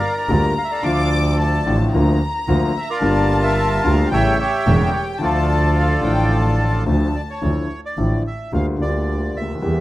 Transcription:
Already playing: A#4 D5 F5 A#5
0.17 D5
0.29 D2 D3 G3 A#3 F4
0.58 F5
0.64 E5
0.71 A4 D5 F5
0.82 D2 D3 F3 A3 F4 D6
1.40 A5
1.66 A1 A2 D3 F3 A3 F4
1.94 D2 D3 F3 A#3 F4 A#5
2.48 D2 D3 F3 A#3 F4
2.77 E5
2.90 F4 A#4 D5
3.00 G1 G2 D3 G3 A#3 F4 A5
3.43 A#4 E5
3.84 D2 D3 G3 A#3 F4 F5
4.11 A1 A2 C#3 G3 A3 E4 C#5 E5 G5
4.39 G4 C#5 E5
4.66 E1 E2 C#3 G3 A3 E4
4.93 C#5
5.19 D2 D3 F3 A3 F4 D5 A5
5.24 F4 A4
5.76 F5
6.01 A1 A2 D3 F3 A3
6.05 F4 G5
6.33 A5
6.86 D2 D3 F3 A3 F4 A5
7.15 D5
7.30 C#5
7.42 D2 D3 F3 A3 E4
7.86 D5
7.98 A1 A2 D3 F3 A3 E4
8.27 E5
8.52 D2 D3 G3 A#3 F4 F5
8.78 D2 D3 G3 A#3 F4 D5
9.36 D2 E5
9.41 C#2
9.48 D2
9.55 D#2
9.62 E2 E3 G3 A#3 G4

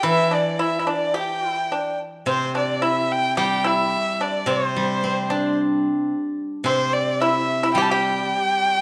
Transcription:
0.03 E3 E4 E5
0.31 D4 D5
0.59 E4 E5
0.79 E4 E5
0.87 D4 D5
1.14 G4 G5
1.50 E4
1.72 D4
2.26 C3 C4 C5
2.55 D4 D5
2.82 E4 E5
3.12 G5
3.37 G3 G4 G5
3.64 E4 E5
4.21 D4 D5
4.46 C3 C4
4.51 C5
4.76 G3
5.04 C4
5.30 D4
6.64 C3 C4 C5
6.93 D5
7.21 E4 E5
7.63 E4
7.74 G3 G4 G5
7.82 A5
7.90 G4 G5

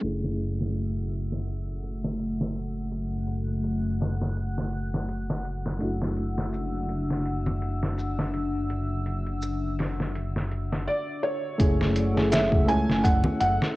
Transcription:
0.01 F#1 A3 C#4 E4 F#5 E6, closed hi-hat
0.06 G#4
0.24 snare
0.39 closed hi-hat
0.61 snare
0.75 closed hi-hat
1.11 closed hi-hat
1.32 snare
1.47 closed hi-hat
1.83 closed hi-hat
2.04 snare
2.19 closed hi-hat
2.41 snare
2.55 closed hi-hat
2.92 F#6, closed hi-hat
3.28 closed hi-hat
3.48 closed hi-hat
3.64 closed hi-hat
4.01 snare, open hi-hat
4.21 snare
4.37 closed hi-hat
4.58 snare
4.73 closed hi-hat
4.94 snare
5.09 closed hi-hat
5.30 snare
5.45 closed hi-hat
5.66 snare
5.79 F#1 A3 D4 E4 E6, closed hi-hat
5.84 F#4
6.02 snare
6.16 closed hi-hat
6.38 snare
6.53 closed hi-hat, maracas
6.89 closed hi-hat
7.10 snare
7.25 closed hi-hat
7.46 low conga
7.62 closed hi-hat
7.83 snare
7.98 closed hi-hat, maracas
8.19 snare
8.34 closed hi-hat
8.70 closed hi-hat
9.06 closed hi-hat
9.26 closed hi-hat
9.42 closed hi-hat, maracas
9.79 snare, open hi-hat
10.00 snare
10.15 closed hi-hat
10.36 snare
10.52 closed hi-hat
10.73 snare
10.88 D5
11.23 C#5
11.58 F#1 A3 C#4 E4 G#4 F#5 E6, kick, closed hi-hat
11.81 snare
11.96 closed hi-hat
12.15 A3 C#4 E4 G#4, snare
12.32 E5, snare, closed hi-hat, maracas
12.52 kick
12.66 C#2 A3 C#4 E4 G#5, closed hi-hat
12.71 A4
12.89 F#1, snare
13.04 F#1 F#5, kick, closed hi-hat
13.24 low conga
13.40 F#1 F#5, closed hi-hat
13.62 snare

